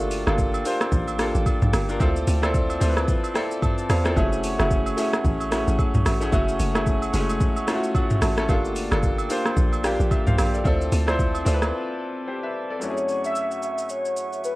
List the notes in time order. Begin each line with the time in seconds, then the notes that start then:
Already playing: G1 A#3 D4 F4 A4 F5 G5 D6
0.00 shaker
0.11 open hi-hat, shaker
0.26 G1 A#3 D4 F4 G4 A4 A#4 F5, cross-stick, high agogo, shaker
0.38 kick, shaker
0.54 high agogo, shaker
0.64 A#3 D4 F4 G4 A#4 C5 F5, open hi-hat, shaker
0.81 cross-stick, high agogo, shaker
0.92 A1, kick, shaker
1.08 high agogo, shaker
1.18 A#3 D4 F4 G4 A4 A#4 F5, cross-stick, open hi-hat, shaker
1.35 A1, shaker
1.46 kick, high agogo, shaker
1.62 A#1, mid tom, shaker
1.73 G1 G4 A#4 F5, cross-stick, open hi-hat, high agogo, shaker
1.88 A#3 D4 F4 A#4, shaker
1.99 D2 C4 E4 F4 A4 C5 D5 A5, kick, high agogo, shaker
2.16 shaker
2.27 D2, open hi-hat, shaker
2.42 C4 E4 F4 A4 C5 D5, cross-stick, high agogo, shaker
2.54 kick, shaker
2.70 high agogo, shaker
2.81 D2 C4 E4 F4 A4 C5 D5, open hi-hat, shaker
2.89 B4
2.97 cross-stick, high agogo, shaker
3.08 kick, shaker
3.24 high agogo, shaker
3.34 C4 E4 F4 A4 C5 D5 G5, cross-stick, open hi-hat, shaker
3.51 shaker
3.62 A5, kick, mid tom, high agogo, shaker
3.78 shaker
3.89 E2 F4 C5 D5 F5, cross-stick, open hi-hat, high agogo, shaker
4.04 C4 E4 F4 A4, cross-stick, shaker
4.15 F#1 A3 C#4 E4 F#4 G#4 A4 E5 F#5 C#6, kick, high agogo, shaker
4.32 shaker
4.44 open hi-hat, shaker
4.58 F#1 A3 C#4 E4 F#4 G#4 A4 E5, cross-stick, high agogo, shaker
4.71 kick, shaker
4.86 high agogo, shaker
4.97 A3 C#4 E4 F#4 G#4 A4 E5, open hi-hat, shaker
5.13 cross-stick, high agogo, shaker
5.25 A1, kick, shaker
5.40 high agogo, shaker
5.51 A3 C#4 E4 F#4 G#4 A4 E5, cross-stick, open hi-hat, shaker
5.67 A1, shaker
5.78 kick, high agogo, shaker
5.94 B1, mid tom, shaker
6.05 A1 F#4 A4 E5, cross-stick, open hi-hat, high agogo, shaker
6.20 A3 C#4 E4 G#4, shaker
6.32 F#1 A3 C#4 E4 F#4 A4 E5, kick, high agogo, shaker
6.49 shaker
6.60 F#1, open hi-hat, shaker
6.74 A3 C#4 E4 F#4 G#4 A4 E5, cross-stick, high agogo, shaker
6.87 kick, shaker
7.02 high agogo, shaker
7.13 F#1 G#3 C#4 E4 F#4 G#4 A4 E5, open hi-hat, shaker
7.19 A3
7.30 high agogo, shaker
7.41 kick, shaker
7.56 high agogo, shaker
7.67 A3 C#4 E4 F4 F#4 A4 E5, cross-stick, open hi-hat, shaker
7.76 F#4
7.84 shaker
7.95 F#5, kick, high agogo, shaker
8.10 mid tom, shaker
8.22 A1 F#4 A4 E5 A5, cross-stick, open hi-hat, high agogo, shaker
8.36 A3 C#4 E4 A4, cross-stick, shaker
8.48 G1 A#3 D4 F4 G4 A4 A#4 D5 F5 G5 D6, kick, high agogo, shaker
8.65 shaker
8.76 open hi-hat, shaker
8.91 G1 A#3 D4 F4 G4 A4 A#4 F5, cross-stick, high agogo, shaker
9.03 kick, shaker
9.18 high agogo, shaker
9.29 A#3 D4 F4 G4 A#4 C5 F5, open hi-hat, shaker
9.46 cross-stick, high agogo, shaker
9.57 A#1, kick, shaker
9.73 high agogo, shaker
9.83 A#3 D4 F4 G4 A#4 F5, cross-stick, open hi-hat, shaker
10.00 A#1, shaker
10.11 A#4 E5, kick, high agogo, shaker
10.27 B1 C5 F5, mid tom, shaker
10.38 A#1 G4 A#4 F5, cross-stick, open hi-hat, high agogo, shaker
10.54 A4 D5, shaker
10.64 D2 C4 E4 F4 A4 C5 D5 A5 D6, kick, high agogo, shaker
10.81 shaker
10.92 D2, open hi-hat, shaker
11.07 C4 E4 F4 C5 D5, cross-stick, high agogo, shaker
11.19 kick, shaker
11.35 high agogo, shaker
11.45 D2 C4 E4 F4 A4 C5 D5, open hi-hat, shaker
11.54 B4
11.62 cross-stick, high agogo, shaker
12.27 G4 C5
12.43 B4 E5
12.70 A4 D5
12.79 F#2 A3 C#4 E4 F#4 C#5 E5 F#5 C#6, shaker
12.84 F#4
12.90 G#4
12.97 shaker
13.08 shaker
13.24 E5, shaker
13.35 shaker
13.51 shaker
13.62 E5, shaker
13.78 shaker
13.89 C#5, shaker
14.05 shaker
14.16 shaker
14.32 shaker
14.44 B4, shaker